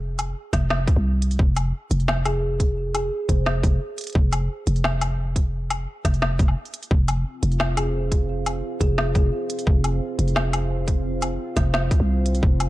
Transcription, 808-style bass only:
Already playing: F1
0.53 F1
0.96 C2
1.39 F1
1.91 F1
3.29 F1
3.63 F1
4.15 F1
4.67 F1
6.05 F1
6.39 F1
6.91 F1
7.43 F1
8.81 F1
9.15 F1
9.67 F1
10.19 F1
11.57 F1
12.00 C2
12.43 F1

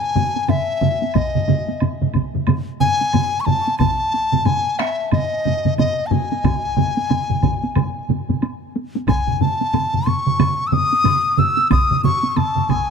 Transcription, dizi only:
Already playing: G#5
0.50 E5
1.16 D#5
2.80 G#5
3.40 C#6
3.45 A5
3.79 A5
4.46 G#5
4.79 E5
5.13 D#5
5.79 D#5
6.06 A5
6.11 G#5
9.09 G#5
9.41 A5
10.08 C#6
10.67 E6
10.73 D#6
11.39 E6
11.72 D#6
12.04 C#6
12.32 C#6
12.37 A5
12.70 G#5

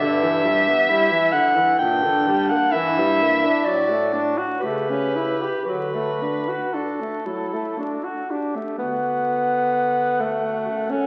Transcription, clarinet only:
Already playing: G4
0.89 E4
1.79 D4
2.72 E4
3.65 F#4
4.61 G4
5.65 F#4
6.73 F#4
7.26 E4
7.77 F#4
8.30 G4
8.81 F#4
10.66 A4

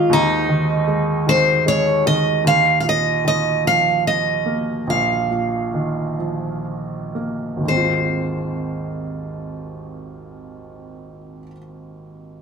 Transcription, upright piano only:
Already playing: D#3 G#3
0.10 D#2
0.48 D#3
0.87 G#3
1.27 D#3
1.66 G#3
2.06 D#3
2.44 D#2
2.83 A#2
3.25 D#3
3.65 F3
4.46 A#3
4.87 A#1
5.31 A#2
5.74 D#3
6.19 F3
7.15 A#3
7.56 G#1 D#2
7.64 D#3 G#3
7.71 C4 F4

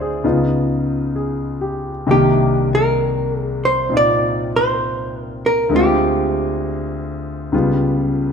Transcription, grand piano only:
Already playing: D2 D3 G#3 C4 F4 C5 D5 E5
0.01 G#4
0.24 C#2 C#3 B3 D#4 F4
1.16 G#4
1.61 G4
2.07 C2 C3 D#3 A#3 D4
3.89 A#2 C4 D#4 F4
5.69 D2 D3 G#3
5.73 C4 F4
7.52 C#2 C#3 G3 B3 F4

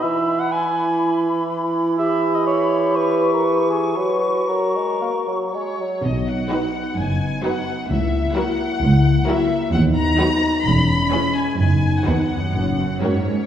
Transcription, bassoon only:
0.03 E3
3.96 F#3
4.48 F#3
4.75 G#3
5.01 A#3
5.27 F#3
5.54 G#3
5.80 F#3

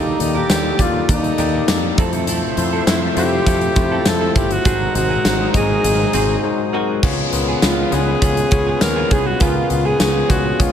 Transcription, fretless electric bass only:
Already playing: D#2
0.20 D#2
0.49 D#2
0.79 D#2
1.09 D#2
1.39 D#2
1.68 F2
1.98 F2
2.57 F2
2.87 F2
3.17 F2
3.46 F2
3.76 F2
4.06 F2
4.36 G1
4.65 G#1
4.95 G#1
5.25 G#1
5.54 G#1
5.84 G#1
6.14 G#1
7.03 C#2
7.33 C#2
7.63 C#2
7.92 C#2
8.22 C#2
8.52 C#2
8.82 D#2
9.11 C2
9.41 C#2
9.70 C#2
10.00 C#2
10.30 C#2
10.59 C#2

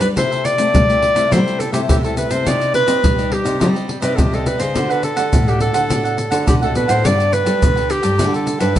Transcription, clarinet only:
0.01 B4
0.18 C5
0.45 D5
1.32 C5
1.60 A4
1.73 G4
1.90 G4
2.04 A4
2.18 B4
2.31 C5
2.48 D5
2.75 B4
3.33 G4
4.02 B4
4.15 G4 A4
4.34 A4
4.47 B4
4.60 C5
4.91 B4
5.04 A4
5.48 G4
5.61 A4
6.48 G4
6.64 A4
6.76 B4
6.90 C5
7.06 D5
7.33 B4
7.91 G4
8.35 A4
8.61 B4

